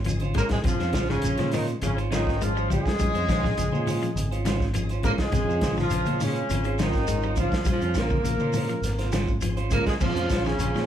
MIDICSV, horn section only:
0, 0, Header, 1, 2, 480
1, 0, Start_track
1, 0, Key_signature, -5, "minor"
1, 0, Tempo, 585366
1, 530, Time_signature, 4, 2, 24, 8
1, 8906, End_track
2, 0, Start_track
2, 0, Title_t, "Horn section"
2, 0, Program_c, 0, 61
2, 307, Note_on_c, 0, 58, 101
2, 307, Note_on_c, 0, 70, 110
2, 359, Note_off_c, 0, 58, 0
2, 359, Note_off_c, 0, 70, 0
2, 425, Note_on_c, 0, 56, 88
2, 425, Note_on_c, 0, 68, 95
2, 474, Note_off_c, 0, 56, 0
2, 474, Note_off_c, 0, 68, 0
2, 544, Note_on_c, 0, 53, 93
2, 544, Note_on_c, 0, 65, 101
2, 876, Note_off_c, 0, 53, 0
2, 876, Note_off_c, 0, 65, 0
2, 907, Note_on_c, 0, 49, 87
2, 907, Note_on_c, 0, 61, 94
2, 1231, Note_off_c, 0, 49, 0
2, 1231, Note_off_c, 0, 61, 0
2, 1268, Note_on_c, 0, 51, 70
2, 1268, Note_on_c, 0, 63, 76
2, 1372, Note_off_c, 0, 51, 0
2, 1372, Note_off_c, 0, 63, 0
2, 1517, Note_on_c, 0, 49, 76
2, 1517, Note_on_c, 0, 61, 83
2, 1619, Note_off_c, 0, 49, 0
2, 1619, Note_off_c, 0, 61, 0
2, 1750, Note_on_c, 0, 51, 87
2, 1750, Note_on_c, 0, 63, 94
2, 1963, Note_off_c, 0, 51, 0
2, 1963, Note_off_c, 0, 63, 0
2, 1988, Note_on_c, 0, 53, 93
2, 1988, Note_on_c, 0, 65, 101
2, 2218, Note_off_c, 0, 53, 0
2, 2218, Note_off_c, 0, 65, 0
2, 2230, Note_on_c, 0, 56, 101
2, 2230, Note_on_c, 0, 68, 110
2, 3625, Note_off_c, 0, 56, 0
2, 3625, Note_off_c, 0, 68, 0
2, 4140, Note_on_c, 0, 58, 98
2, 4140, Note_on_c, 0, 70, 107
2, 4193, Note_off_c, 0, 58, 0
2, 4193, Note_off_c, 0, 70, 0
2, 4264, Note_on_c, 0, 56, 88
2, 4264, Note_on_c, 0, 68, 95
2, 4705, Note_off_c, 0, 56, 0
2, 4705, Note_off_c, 0, 68, 0
2, 4757, Note_on_c, 0, 53, 101
2, 4757, Note_on_c, 0, 65, 110
2, 5076, Note_off_c, 0, 53, 0
2, 5076, Note_off_c, 0, 65, 0
2, 5104, Note_on_c, 0, 49, 83
2, 5104, Note_on_c, 0, 61, 90
2, 5544, Note_off_c, 0, 49, 0
2, 5544, Note_off_c, 0, 61, 0
2, 5593, Note_on_c, 0, 51, 89
2, 5593, Note_on_c, 0, 63, 97
2, 6029, Note_off_c, 0, 51, 0
2, 6029, Note_off_c, 0, 63, 0
2, 6071, Note_on_c, 0, 53, 85
2, 6071, Note_on_c, 0, 65, 93
2, 6285, Note_off_c, 0, 53, 0
2, 6285, Note_off_c, 0, 65, 0
2, 6313, Note_on_c, 0, 53, 79
2, 6313, Note_on_c, 0, 65, 85
2, 6526, Note_off_c, 0, 53, 0
2, 6526, Note_off_c, 0, 65, 0
2, 6555, Note_on_c, 0, 58, 86
2, 6555, Note_on_c, 0, 70, 93
2, 7472, Note_off_c, 0, 58, 0
2, 7472, Note_off_c, 0, 70, 0
2, 7978, Note_on_c, 0, 58, 92
2, 7978, Note_on_c, 0, 70, 100
2, 8091, Note_off_c, 0, 58, 0
2, 8091, Note_off_c, 0, 70, 0
2, 8097, Note_on_c, 0, 56, 87
2, 8097, Note_on_c, 0, 68, 95
2, 8149, Note_off_c, 0, 56, 0
2, 8149, Note_off_c, 0, 68, 0
2, 8219, Note_on_c, 0, 53, 84
2, 8219, Note_on_c, 0, 65, 91
2, 8556, Note_off_c, 0, 53, 0
2, 8556, Note_off_c, 0, 65, 0
2, 8575, Note_on_c, 0, 49, 89
2, 8575, Note_on_c, 0, 61, 97
2, 8906, Note_off_c, 0, 49, 0
2, 8906, Note_off_c, 0, 61, 0
2, 8906, End_track
0, 0, End_of_file